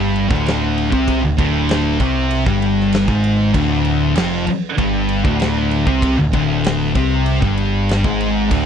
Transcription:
Already playing: picked electric bass G1, distorted electric guitar G2 G3
0.16 crash
0.29 picked electric bass D1, distorted electric guitar D2 D3, kick
0.34 snare
0.46 snare, crash
0.78 crash
0.91 picked electric bass C2, distorted electric guitar C3 C4, kick
1.08 kick, crash
1.23 picked electric bass D1, distorted electric guitar D2
1.38 picked electric bass D1, distorted electric guitar D2 D3, kick, crash
1.69 snare, crash
2.00 picked electric bass C2, distorted electric guitar C3 C4, kick, crash
2.31 crash
2.46 picked electric bass G1, distorted electric guitar G2 G3, kick
2.62 crash
2.80 snare
2.93 snare, crash
3.08 picked electric bass G#1, distorted electric guitar G#2 G#3, kick
3.24 crash
3.54 picked electric bass D1, distorted electric guitar D2 D3, kick, crash
3.85 crash
4.15 picked electric bass F1, distorted electric guitar F2 F3, snare, crash
4.47 muted distorted electric guitar stroke, muted picked electric bass stroke, crash
4.78 picked electric bass G1, distorted electric guitar G2 G3, kick, crash
5.09 crash
5.24 picked electric bass D1, distorted electric guitar D2 D3, kick
5.40 snare, crash
5.71 crash
5.87 picked electric bass C2, distorted electric guitar C3 C4, kick
6.02 kick, crash
6.18 picked electric bass D1, distorted electric guitar D2
6.33 picked electric bass D1, distorted electric guitar D2 D3, kick, crash
6.64 snare, crash
6.95 picked electric bass C2, distorted electric guitar C3 C4, kick, crash
7.26 crash
7.42 picked electric bass G1, distorted electric guitar G2 G3, kick
7.57 crash
7.89 snare, crash
8.04 picked electric bass G#1, distorted electric guitar G#2 G#3, kick
8.20 crash
8.51 picked electric bass D1, distorted electric guitar D2 D3, kick, crash

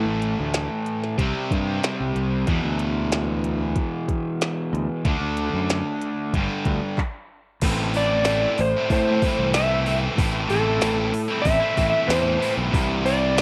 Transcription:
Already playing: overdriven electric guitar A2 E3 A3
0.06 fingered electric bass A1
0.22 closed hi-hat
0.39 fingered electric bass D2
0.54 snare, closed hi-hat
0.86 closed hi-hat
1.04 snare
1.18 fingered electric bass C2, overdriven electric guitar C3 G3 C4, kick, closed hi-hat
1.51 fingered electric bass G2, kick, closed hi-hat
1.84 snare, closed hi-hat
2.00 fingered electric bass C2
2.16 fingered electric bass C2, closed hi-hat
2.46 overdriven electric guitar E2 B2 E3, fingered electric bass E2, kick, closed hi-hat
2.64 fingered electric bass D2
2.79 closed hi-hat
3.12 snare, closed hi-hat
3.44 closed hi-hat
3.76 kick, closed hi-hat
4.08 kick, closed hi-hat
4.41 snare, closed hi-hat
4.73 fingered electric bass D2, closed hi-hat
5.05 fingered electric bass D2, overdriven electric guitar D3 A3 D4, kick, closed hi-hat
5.20 fingered electric bass D2
5.37 closed hi-hat
5.53 fingered electric bass F#2
5.70 snare, closed hi-hat
6.02 closed hi-hat
6.33 fingered electric bass G1, overdriven electric guitar G2 D3, kick, closed hi-hat
6.38 overdriven electric guitar G3
6.65 fingered electric bass D2, kick, closed hi-hat
6.98 kick, clap
7.62 fingered electric bass A1, overdriven electric guitar A2 E3 A3 C4, kick, open hi-hat, crash
7.66 overdriven electric guitar E4
7.94 overdriven electric guitar E3 A3 C4 E4, electric slide guitar D5, open hi-hat
8.24 overdriven electric guitar A2 E3 A3, snare, open hi-hat
8.29 overdriven electric guitar C4 E4
8.42 overdriven electric guitar A3 C4 E4
8.58 fingered electric bass A1, electric slide guitar C5, muted overdriven electric guitar stroke, open hi-hat
8.76 overdriven electric guitar A3 C4 E4
8.90 fingered electric bass A2, electric slide guitar C5, kick, open hi-hat
9.07 overdriven electric guitar A3 C4 E4
9.22 overdriven electric guitar E3 A3 C4, kick, open hi-hat
9.27 overdriven electric guitar E4
9.39 fingered electric bass C2
9.54 overdriven electric guitar A2 E3 A3 C4, electric slide guitar E5, snare, open hi-hat
9.58 overdriven electric guitar E4
9.71 overdriven electric guitar A3 C4 E4
9.86 overdriven electric guitar E3 A3 C4 E4, open hi-hat
10.16 fingered electric bass A1, overdriven electric guitar A2 E3 A3 C4 E4, kick, open hi-hat
10.48 fingered electric bass A1, overdriven electric guitar E3 A3 C4 E4, electric slide guitar A4, open hi-hat
10.80 fingered electric bass A1, overdriven electric guitar A2 E3 A3 C4 E4, snare, open hi-hat
10.97 overdriven electric guitar A3 C4 E4
11.13 muted overdriven electric guitar stroke, open hi-hat
11.28 overdriven electric guitar A3 C4 E4
11.42 fingered electric bass A1, electric slide guitar E5, kick, open hi-hat
11.60 overdriven electric guitar A3 C4 E4
11.76 fingered electric bass A1, overdriven electric guitar E3 A3 C4 E4, kick, open hi-hat
11.90 electric slide guitar E5
12.07 fingered electric bass E2, overdriven electric guitar A2 E3 A3 C4 E4, electric slide guitar C5, snare, open hi-hat
12.23 overdriven electric guitar A3 C4 E4
12.39 overdriven electric guitar E3 A3 C4 E4, open hi-hat
12.57 fingered electric bass B1
12.71 fingered electric bass C2, overdriven electric guitar C3 E3 G3 C4 E4, kick, open hi-hat
13.03 overdriven electric guitar E3 G3 C4 E4, electric slide guitar D5, open hi-hat
13.35 overdriven electric guitar C3 E3 G3 C4, snare, open hi-hat

